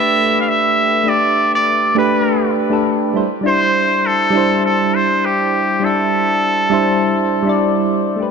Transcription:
0, 0, Header, 1, 3, 480
1, 0, Start_track
1, 0, Tempo, 594059
1, 871, Time_signature, 4, 2, 24, 8
1, 6714, End_track
2, 0, Start_track
2, 0, Title_t, "Muted trumpet"
2, 0, Program_c, 0, 59
2, 0, Note_on_c, 0, 76, 118
2, 324, Note_off_c, 0, 76, 0
2, 329, Note_on_c, 0, 77, 88
2, 391, Note_on_c, 0, 76, 108
2, 403, Note_off_c, 0, 77, 0
2, 879, Note_on_c, 0, 74, 108
2, 891, Note_off_c, 0, 76, 0
2, 1241, Note_off_c, 0, 74, 0
2, 1250, Note_on_c, 0, 74, 105
2, 1574, Note_off_c, 0, 74, 0
2, 1602, Note_on_c, 0, 71, 91
2, 2044, Note_off_c, 0, 71, 0
2, 2801, Note_on_c, 0, 72, 119
2, 3281, Note_on_c, 0, 69, 112
2, 3293, Note_off_c, 0, 72, 0
2, 3756, Note_off_c, 0, 69, 0
2, 3762, Note_on_c, 0, 69, 101
2, 3999, Note_on_c, 0, 72, 112
2, 4011, Note_off_c, 0, 69, 0
2, 4244, Note_on_c, 0, 67, 93
2, 4256, Note_off_c, 0, 72, 0
2, 4723, Note_on_c, 0, 69, 106
2, 4735, Note_off_c, 0, 67, 0
2, 6397, Note_off_c, 0, 69, 0
2, 6714, End_track
3, 0, Start_track
3, 0, Title_t, "Synth keys"
3, 0, Program_c, 1, 88
3, 0, Control_c, 1, 64, 127
3, 0, Note_on_c, 1, 57, 100
3, 0, Note_on_c, 1, 62, 85
3, 0, Note_on_c, 1, 67, 91
3, 0, Note_on_c, 1, 71, 110
3, 827, Note_off_c, 1, 57, 0
3, 835, Note_off_c, 1, 62, 0
3, 835, Note_on_c, 1, 57, 75
3, 843, Note_off_c, 1, 67, 0
3, 853, Note_off_c, 1, 71, 0
3, 855, Note_on_c, 1, 62, 71
3, 870, Note_on_c, 1, 67, 74
3, 889, Note_on_c, 1, 76, 87
3, 1546, Note_off_c, 1, 57, 0
3, 1556, Note_off_c, 1, 62, 0
3, 1563, Note_off_c, 1, 67, 0
3, 1573, Note_off_c, 1, 76, 0
3, 1574, Note_on_c, 1, 57, 101
3, 1584, Note_on_c, 1, 62, 86
3, 1589, Note_on_c, 1, 67, 92
3, 1600, Note_on_c, 1, 71, 106
3, 2035, Note_off_c, 1, 57, 0
3, 2040, Note_off_c, 1, 62, 0
3, 2043, Note_off_c, 1, 67, 0
3, 2048, Note_off_c, 1, 71, 0
3, 2180, Note_on_c, 1, 57, 95
3, 2187, Note_on_c, 1, 62, 83
3, 2198, Note_on_c, 1, 67, 80
3, 2204, Note_on_c, 1, 69, 102
3, 2515, Note_off_c, 1, 57, 0
3, 2519, Note_off_c, 1, 62, 0
3, 2524, Note_off_c, 1, 67, 0
3, 2527, Note_off_c, 1, 69, 0
3, 2535, Note_on_c, 1, 55, 77
3, 2540, Note_on_c, 1, 62, 68
3, 2549, Note_on_c, 1, 64, 67
3, 2558, Note_on_c, 1, 72, 84
3, 2562, Control_c, 1, 64, 0
3, 2611, Note_off_c, 1, 55, 0
3, 2613, Note_off_c, 1, 62, 0
3, 2618, Note_off_c, 1, 64, 0
3, 2622, Note_off_c, 1, 72, 0
3, 2712, Control_c, 1, 64, 127
3, 2755, Note_on_c, 1, 55, 78
3, 2775, Note_on_c, 1, 62, 80
3, 2788, Note_on_c, 1, 64, 78
3, 2804, Note_on_c, 1, 72, 95
3, 3466, Note_off_c, 1, 55, 0
3, 3476, Note_off_c, 1, 62, 0
3, 3476, Note_on_c, 1, 55, 102
3, 3482, Note_off_c, 1, 64, 0
3, 3490, Note_off_c, 1, 72, 0
3, 3496, Note_on_c, 1, 62, 88
3, 3515, Note_on_c, 1, 64, 89
3, 3531, Note_on_c, 1, 72, 105
3, 4666, Note_off_c, 1, 55, 0
3, 4676, Note_off_c, 1, 62, 0
3, 4683, Note_on_c, 1, 55, 84
3, 4686, Note_off_c, 1, 64, 0
3, 4694, Note_off_c, 1, 72, 0
3, 4700, Note_on_c, 1, 62, 77
3, 4715, Note_on_c, 1, 64, 71
3, 4737, Note_on_c, 1, 76, 91
3, 5390, Note_off_c, 1, 55, 0
3, 5398, Note_off_c, 1, 62, 0
3, 5406, Note_off_c, 1, 64, 0
3, 5411, Note_on_c, 1, 55, 100
3, 5417, Note_off_c, 1, 76, 0
3, 5421, Note_on_c, 1, 62, 90
3, 5428, Note_on_c, 1, 64, 92
3, 5441, Note_on_c, 1, 72, 104
3, 5874, Note_off_c, 1, 55, 0
3, 5879, Note_off_c, 1, 62, 0
3, 5882, Note_off_c, 1, 64, 0
3, 5889, Note_off_c, 1, 72, 0
3, 5999, Note_on_c, 1, 55, 97
3, 6020, Note_on_c, 1, 62, 85
3, 6034, Note_on_c, 1, 64, 93
3, 6053, Note_on_c, 1, 74, 104
3, 6585, Note_off_c, 1, 55, 0
3, 6592, Note_on_c, 1, 57, 69
3, 6595, Note_off_c, 1, 62, 0
3, 6603, Note_off_c, 1, 64, 0
3, 6612, Note_off_c, 1, 74, 0
3, 6613, Note_on_c, 1, 62, 63
3, 6625, Note_on_c, 1, 67, 63
3, 6640, Control_c, 1, 64, 0
3, 6645, Note_on_c, 1, 71, 75
3, 6714, Note_off_c, 1, 57, 0
3, 6714, Note_off_c, 1, 62, 0
3, 6714, Note_off_c, 1, 67, 0
3, 6714, Note_off_c, 1, 71, 0
3, 6714, End_track
0, 0, End_of_file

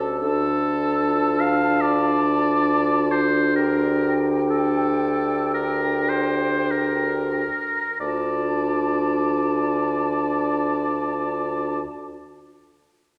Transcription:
0, 0, Header, 1, 6, 480
1, 0, Start_track
1, 0, Key_signature, -1, "minor"
1, 0, Tempo, 790514
1, 129, Time_signature, 4, 2, 24, 8
1, 1091, Tempo, 855920
1, 1571, Tempo, 924499
1, 2531, Tempo, 1034483
1, 3011, Tempo, 1167315
1, 3491, Tempo, 1276596
1, 5927, End_track
2, 0, Start_track
2, 0, Title_t, "Flute"
2, 0, Program_c, 0, 73
2, 0, Note_on_c, 0, 81, 44
2, 107, Note_off_c, 0, 81, 0
2, 138, Note_on_c, 0, 81, 46
2, 1856, Note_off_c, 0, 81, 0
2, 2041, Note_on_c, 0, 79, 43
2, 3767, Note_off_c, 0, 79, 0
2, 3982, Note_on_c, 0, 81, 30
2, 5416, Note_off_c, 0, 81, 0
2, 5927, End_track
3, 0, Start_track
3, 0, Title_t, "Oboe"
3, 0, Program_c, 1, 68
3, 136, Note_on_c, 1, 69, 57
3, 854, Note_on_c, 1, 77, 61
3, 863, Note_off_c, 1, 69, 0
3, 1101, Note_on_c, 1, 74, 66
3, 1109, Note_off_c, 1, 77, 0
3, 1810, Note_on_c, 1, 72, 53
3, 1818, Note_off_c, 1, 74, 0
3, 2039, Note_off_c, 1, 72, 0
3, 2042, Note_on_c, 1, 70, 52
3, 2349, Note_off_c, 1, 70, 0
3, 2533, Note_on_c, 1, 69, 49
3, 2993, Note_off_c, 1, 69, 0
3, 3014, Note_on_c, 1, 70, 46
3, 3241, Note_on_c, 1, 72, 52
3, 3247, Note_off_c, 1, 70, 0
3, 3495, Note_on_c, 1, 70, 42
3, 3501, Note_off_c, 1, 72, 0
3, 3977, Note_off_c, 1, 70, 0
3, 3979, Note_on_c, 1, 74, 36
3, 5413, Note_off_c, 1, 74, 0
3, 5927, End_track
4, 0, Start_track
4, 0, Title_t, "Clarinet"
4, 0, Program_c, 2, 71
4, 0, Note_on_c, 2, 67, 41
4, 433, Note_off_c, 2, 67, 0
4, 610, Note_on_c, 2, 65, 36
4, 2022, Note_off_c, 2, 65, 0
4, 2048, Note_on_c, 2, 67, 42
4, 3769, Note_off_c, 2, 67, 0
4, 3985, Note_on_c, 2, 65, 32
4, 5418, Note_off_c, 2, 65, 0
4, 5927, End_track
5, 0, Start_track
5, 0, Title_t, "French horn"
5, 0, Program_c, 3, 60
5, 0, Note_on_c, 3, 61, 40
5, 128, Note_off_c, 3, 61, 0
5, 131, Note_on_c, 3, 62, 45
5, 3767, Note_off_c, 3, 62, 0
5, 3978, Note_on_c, 3, 62, 35
5, 5412, Note_off_c, 3, 62, 0
5, 5927, End_track
6, 0, Start_track
6, 0, Title_t, "Bassoon"
6, 0, Program_c, 4, 70
6, 0, Note_on_c, 4, 38, 47
6, 108, Note_off_c, 4, 38, 0
6, 136, Note_on_c, 4, 38, 41
6, 3769, Note_off_c, 4, 38, 0
6, 3982, Note_on_c, 4, 38, 31
6, 5415, Note_off_c, 4, 38, 0
6, 5927, End_track
0, 0, End_of_file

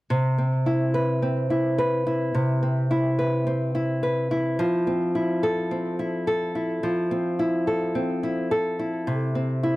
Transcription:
0, 0, Header, 1, 2, 480
1, 0, Start_track
1, 0, Key_signature, 0, "major"
1, 0, Tempo, 560748
1, 86, Time_signature, 4, 2, 24, 8
1, 8357, End_track
2, 0, Start_track
2, 0, Title_t, "Nylon-string guitar"
2, 0, Program_c, 0, 24
2, 86, Note_on_c, 0, 48, 70
2, 328, Note_on_c, 0, 60, 46
2, 567, Note_on_c, 0, 64, 55
2, 806, Note_on_c, 0, 71, 55
2, 1044, Note_off_c, 0, 60, 0
2, 1047, Note_on_c, 0, 60, 52
2, 1283, Note_off_c, 0, 64, 0
2, 1286, Note_on_c, 0, 64, 50
2, 1517, Note_off_c, 0, 71, 0
2, 1527, Note_on_c, 0, 71, 64
2, 1764, Note_off_c, 0, 64, 0
2, 1768, Note_on_c, 0, 64, 54
2, 1997, Note_off_c, 0, 48, 0
2, 2007, Note_on_c, 0, 48, 69
2, 2245, Note_off_c, 0, 60, 0
2, 2248, Note_on_c, 0, 60, 50
2, 2484, Note_off_c, 0, 64, 0
2, 2488, Note_on_c, 0, 64, 55
2, 2717, Note_off_c, 0, 71, 0
2, 2727, Note_on_c, 0, 71, 61
2, 2964, Note_off_c, 0, 60, 0
2, 2967, Note_on_c, 0, 60, 54
2, 3204, Note_off_c, 0, 64, 0
2, 3208, Note_on_c, 0, 64, 56
2, 3438, Note_off_c, 0, 71, 0
2, 3449, Note_on_c, 0, 71, 66
2, 3686, Note_off_c, 0, 64, 0
2, 3689, Note_on_c, 0, 64, 54
2, 3927, Note_off_c, 0, 48, 0
2, 3929, Note_on_c, 0, 53, 73
2, 3981, Note_off_c, 0, 71, 0
2, 4165, Note_off_c, 0, 60, 0
2, 4168, Note_on_c, 0, 60, 52
2, 4405, Note_off_c, 0, 64, 0
2, 4409, Note_on_c, 0, 64, 59
2, 4649, Note_on_c, 0, 69, 61
2, 4885, Note_off_c, 0, 60, 0
2, 4888, Note_on_c, 0, 60, 59
2, 5125, Note_off_c, 0, 64, 0
2, 5129, Note_on_c, 0, 64, 53
2, 5359, Note_off_c, 0, 69, 0
2, 5369, Note_on_c, 0, 69, 67
2, 5605, Note_off_c, 0, 64, 0
2, 5609, Note_on_c, 0, 64, 51
2, 5838, Note_off_c, 0, 53, 0
2, 5848, Note_on_c, 0, 53, 74
2, 6084, Note_off_c, 0, 60, 0
2, 6087, Note_on_c, 0, 60, 55
2, 6324, Note_off_c, 0, 64, 0
2, 6328, Note_on_c, 0, 64, 57
2, 6557, Note_off_c, 0, 69, 0
2, 6568, Note_on_c, 0, 69, 61
2, 6803, Note_off_c, 0, 60, 0
2, 6806, Note_on_c, 0, 60, 58
2, 7044, Note_off_c, 0, 64, 0
2, 7047, Note_on_c, 0, 64, 58
2, 7276, Note_off_c, 0, 69, 0
2, 7287, Note_on_c, 0, 69, 69
2, 7524, Note_off_c, 0, 64, 0
2, 7527, Note_on_c, 0, 64, 57
2, 7765, Note_on_c, 0, 48, 69
2, 7767, Note_off_c, 0, 53, 0
2, 7820, Note_off_c, 0, 69, 0
2, 8002, Note_off_c, 0, 60, 0
2, 8005, Note_on_c, 0, 60, 50
2, 8243, Note_off_c, 0, 64, 0
2, 8246, Note_on_c, 0, 64, 62
2, 8357, Note_off_c, 0, 48, 0
2, 8357, Note_off_c, 0, 60, 0
2, 8357, Note_off_c, 0, 64, 0
2, 8357, End_track
0, 0, End_of_file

